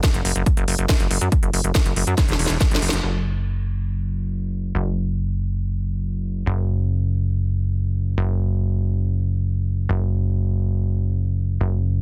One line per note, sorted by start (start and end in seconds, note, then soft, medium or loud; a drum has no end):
0.04 kick loud
0.04 snare loud
0.04 closed hi-hat medium
0.14 0.22 F#1 medium
0.14 closed hi-hat medium
0.25 0.32 F#1 loud
0.25 open hi-hat medium
0.36 0.43 F#1 medium
0.36 closed hi-hat medium
0.46 kick loud
0.46 closed hi-hat medium
0.57 0.64 F#1 medium
0.57 closed hi-hat medium
0.68 0.75 F#1 loud
0.68 open hi-hat loud
0.79 0.86 F#1 medium
0.79 closed hi-hat medium
0.89 kick loud
0.89 snare loud
0.89 closed hi-hat medium
1.00 1.07 F#1 medium
1.00 closed hi-hat medium
1.11 1.18 F#1 loud
1.11 open hi-hat medium
1.21 1.29 F#2 medium
1.21 closed hi-hat medium
1.32 kick loud
1.32 closed hi-hat medium
1.43 1.50 F#1 medium
1.43 closed hi-hat medium
1.53 1.61 F#1 loud
1.53 open hi-hat loud
1.64 1.72 F#1 medium
1.64 closed hi-hat medium
1.75 kick loud
1.75 snare loud
1.75 closed hi-hat medium
1.86 1.93 F#1 medium
1.86 closed hi-hat medium
1.96 2.04 F#1 loud
1.96 open hi-hat medium
2.07 2.14 F#2 medium
2.07 closed hi-hat medium
2.18 kick loud
2.18 snare medium
2.18 closed hi-hat medium
2.29 2.36 E1 medium
2.29 snare medium
2.29 closed hi-hat medium
2.39 2.47 E1 loud
2.39 open hi-hat loud
2.46 2.57 E1 medium
2.46 snare medium
2.46 closed hi-hat medium
2.61 kick loud
2.61 snare medium
2.61 closed hi-hat medium
2.71 2.79 F#1 medium
2.71 snare medium
2.71 closed hi-hat medium
2.82 2.89 F#1 loud
2.82 open hi-hat medium
2.89 3.00 F#1 medium
2.89 snare loud
2.89 closed hi-hat medium
3.03 4.73 F#1 medium
3.03 crash medium
4.75 6.44 F#1 medium
6.46 8.16 F#1 medium
8.18 9.87 F#1 medium
9.89 11.59 F#1 medium
11.61 12.02 F#1 medium